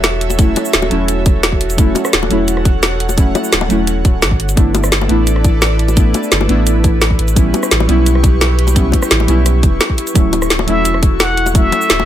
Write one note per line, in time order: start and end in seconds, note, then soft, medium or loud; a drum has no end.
0.00 0.55 E1 medium
0.00 0.37 F#3 loud
0.00 0.38 A3 medium
0.00 0.40 C#4 medium
0.00 0.41 E4 loud
0.00 4.36 F#4 medium
0.00 4.36 A4 medium
0.00 4.36 C#5 medium
0.00 1.76 E5 medium
0.00 snare loud
0.00 closed hi-hat loud
0.00 cabasa soft
0.21 closed hi-hat medium
0.30 closed hi-hat soft
0.30 high bongo medium
0.30 cabasa medium
0.37 0.88 F#3 medium
0.37 0.89 A3 medium
0.37 0.89 C#4 medium
0.37 0.90 E4 medium
0.37 kick loud
0.37 closed hi-hat medium
0.37 cabasa soft
0.56 closed hi-hat medium
0.56 high bongo loud
0.56 cabasa soft
0.65 cabasa medium
0.73 0.89 D1 medium
0.73 snare loud
0.73 closed hi-hat medium
0.73 cabasa soft
0.82 high bongo medium
0.89 1.94 E1 medium
0.89 1.75 F#3 medium
0.89 1.76 A3 medium
0.89 1.77 C#4 medium
0.89 1.77 E4 loud
0.89 closed hi-hat medium
1.08 closed hi-hat loud
1.08 cabasa soft
1.26 kick loud
1.26 closed hi-hat medium
1.26 cabasa soft
1.43 snare loud
1.43 closed hi-hat loud
1.43 cabasa soft
1.52 kick medium
1.61 closed hi-hat medium
1.70 closed hi-hat soft
1.70 cabasa medium
1.76 2.28 F#3 medium
1.76 2.28 A3 medium
1.76 2.29 C#4 medium
1.76 2.29 E4 medium
1.76 4.37 F#5 medium
1.76 kick loud
1.76 closed hi-hat medium
1.76 cabasa soft
1.95 closed hi-hat medium
1.95 high bongo medium
1.95 cabasa soft
2.05 cross-stick medium
2.05 cabasa medium
2.13 2.29 D1 medium
2.13 snare loud
2.13 closed hi-hat loud
2.13 cabasa soft
2.23 high bongo loud
2.29 3.34 E1 medium
2.29 3.15 F#3 medium
2.29 3.15 A3 medium
2.29 3.16 C#4 medium
2.29 3.17 E4 loud
2.29 closed hi-hat medium
2.48 closed hi-hat medium
2.48 cabasa soft
2.57 cross-stick soft
2.65 kick loud
2.65 closed hi-hat medium
2.65 cabasa soft
2.83 snare loud
2.83 closed hi-hat medium
2.83 cabasa soft
3.00 closed hi-hat medium
3.09 closed hi-hat soft
3.09 high bongo medium
3.09 cabasa medium
3.16 3.67 F#3 medium
3.16 3.68 A3 medium
3.16 3.68 C#4 medium
3.16 3.69 E4 medium
3.16 kick loud
3.16 closed hi-hat medium
3.16 cabasa soft
3.35 closed hi-hat medium
3.35 high bongo loud
3.35 cabasa soft
3.44 cabasa medium
3.53 3.68 D1 medium
3.53 snare loud
3.53 closed hi-hat medium
3.53 cabasa soft
3.61 high bongo loud
3.68 4.04 E1 medium
3.68 4.38 F#3 loud
3.68 4.39 A3 medium
3.68 4.39 C#4 medium
3.68 4.40 E4 loud
3.68 closed hi-hat medium
3.68 cabasa soft
3.87 closed hi-hat medium
3.87 cabasa soft
4.05 4.24 D1 medium
4.05 kick loud
4.05 closed hi-hat medium
4.05 cabasa soft
4.22 4.41 A1 loud
4.22 snare loud
4.22 closed hi-hat medium
4.22 cabasa soft
4.31 kick medium
4.40 4.56 G1 medium
4.40 12.05 E4 medium
4.40 7.16 A4 medium
4.40 10.11 B4 medium
4.40 7.16 D5 loud
4.40 closed hi-hat medium
4.49 closed hi-hat soft
4.49 cabasa medium
4.56 5.08 G1 loud
4.56 5.07 A3 medium
4.56 5.07 B3 medium
4.56 5.08 D4 medium
4.56 5.08 E4 medium
4.56 kick loud
4.56 closed hi-hat medium
4.56 cabasa soft
4.75 closed hi-hat medium
4.75 high bongo loud
4.75 cabasa soft
4.84 cross-stick medium
4.84 cabasa medium
4.92 snare loud
4.92 closed hi-hat medium
4.92 cabasa medium
5.01 high bongo loud
5.08 6.13 A1 medium
5.08 5.94 A3 medium
5.08 5.95 B3 medium
5.08 5.95 D4 medium
5.08 5.96 E4 loud
5.08 closed hi-hat medium
5.27 closed hi-hat medium
5.27 cabasa soft
5.36 cross-stick soft
5.44 kick loud
5.44 closed hi-hat medium
5.44 cabasa soft
5.62 snare loud
5.62 closed hi-hat medium
5.62 cabasa medium
5.79 closed hi-hat medium
5.88 closed hi-hat soft
5.88 high bongo medium
5.88 cabasa medium
5.95 6.46 A3 medium
5.95 6.47 B3 medium
5.95 6.48 D4 medium
5.95 6.48 E4 medium
5.95 kick loud
5.95 closed hi-hat medium
5.95 cabasa soft
6.14 closed hi-hat medium
6.14 high bongo medium
6.14 cabasa soft
6.23 cabasa medium
6.32 6.48 G1 medium
6.32 snare loud
6.32 closed hi-hat medium
6.32 cabasa medium
6.41 high bongo medium
6.47 7.18 A1 medium
6.47 7.17 A3 medium
6.47 7.18 B3 medium
6.47 7.18 D4 medium
6.47 7.19 E4 loud
6.47 closed hi-hat medium
6.67 closed hi-hat medium
6.67 cabasa medium
6.84 kick loud
6.84 closed hi-hat medium
6.84 cabasa soft
7.02 snare loud
7.02 closed hi-hat medium
7.02 cabasa soft
7.11 kick medium
7.19 7.53 A1 medium
7.19 10.13 G4 medium
7.19 12.05 C#6 medium
7.19 closed hi-hat medium
7.28 closed hi-hat soft
7.28 cabasa medium
7.35 7.86 G3 medium
7.35 7.86 B3 medium
7.35 7.87 C#4 medium
7.35 7.88 E4 medium
7.35 kick loud
7.35 closed hi-hat medium
7.35 cabasa soft
7.54 closed hi-hat medium
7.54 high bongo medium
7.54 cabasa soft
7.63 cross-stick medium
7.63 cabasa medium
7.71 7.87 A1 medium
7.71 snare loud
7.71 closed hi-hat loud
7.71 cabasa medium
7.80 high bongo medium
7.87 8.92 B1 medium
7.87 8.73 G3 loud
7.87 8.74 B3 medium
7.87 8.74 C#4 medium
7.87 8.75 E4 loud
7.87 closed hi-hat medium
8.06 closed hi-hat medium
8.06 cabasa medium
8.15 cross-stick soft
8.24 kick loud
8.24 closed hi-hat medium
8.24 cabasa soft
8.41 snare loud
8.41 closed hi-hat loud
8.41 cabasa medium
8.59 closed hi-hat medium
8.67 closed hi-hat soft
8.67 high bongo medium
8.67 cabasa medium
8.74 9.25 G3 medium
8.74 9.26 B3 medium
8.74 9.27 C#4 medium
8.74 9.27 E4 medium
8.74 kick loud
8.74 closed hi-hat medium
8.74 cabasa soft
8.92 kick medium
8.92 closed hi-hat medium
8.92 high bongo medium
8.92 cabasa soft
9.02 cross-stick medium
9.02 cabasa medium
9.11 9.27 A1 medium
9.11 snare loud
9.11 closed hi-hat loud
9.11 cabasa medium
9.20 high bongo medium
9.27 9.65 B1 medium
9.27 10.13 G3 medium
9.27 10.13 B3 medium
9.27 10.14 C#4 medium
9.27 10.14 E4 loud
9.27 closed hi-hat medium
9.27 cabasa soft
9.46 cross-stick soft
9.46 closed hi-hat medium
9.46 cabasa medium
9.63 9.79 E1 loud
9.63 kick loud
9.63 closed hi-hat medium
9.63 cabasa soft
9.81 snare loud
9.81 closed hi-hat loud
9.81 cabasa medium
9.90 kick medium
9.98 closed hi-hat medium
9.98 cabasa soft
10.07 closed hi-hat soft
10.07 cabasa medium
10.14 10.66 D1 loud
10.14 10.65 F#3 medium
10.14 10.66 A3 medium
10.14 10.66 C#4 medium
10.14 10.67 E4 medium
10.14 12.05 F#4 medium
10.14 12.05 A4 medium
10.14 kick loud
10.14 closed hi-hat medium
10.14 cabasa soft
10.33 closed hi-hat medium
10.33 high bongo medium
10.33 cabasa soft
10.42 cross-stick medium
10.42 cabasa medium
10.50 snare loud
10.50 closed hi-hat loud
10.50 cabasa medium
10.59 high bongo loud
10.66 11.71 E1 medium
10.66 11.52 F#3 loud
10.66 11.53 A3 medium
10.66 11.53 C#4 medium
10.66 11.54 E4 loud
10.66 11.00 E5 loud
10.66 closed hi-hat medium
10.85 closed hi-hat loud
10.85 cabasa medium
10.94 cross-stick soft
11.03 kick loud
11.03 closed hi-hat medium
11.03 cabasa soft
11.20 11.57 F#5 loud
11.20 snare loud
11.20 closed hi-hat loud
11.20 cabasa soft
11.37 closed hi-hat medium
11.46 closed hi-hat soft
11.46 high bongo medium
11.46 cabasa medium
11.53 12.04 F#3 medium
11.53 12.05 A3 medium
11.53 12.05 C#4 medium
11.53 12.05 E4 medium
11.53 12.05 E5 loud
11.53 kick loud
11.53 closed hi-hat medium
11.53 cabasa soft
11.72 closed hi-hat medium
11.72 high bongo medium
11.72 cabasa soft
11.81 cabasa medium
11.90 12.05 D1 medium
11.90 snare loud
11.90 closed hi-hat loud
11.90 cabasa soft
12.00 high bongo medium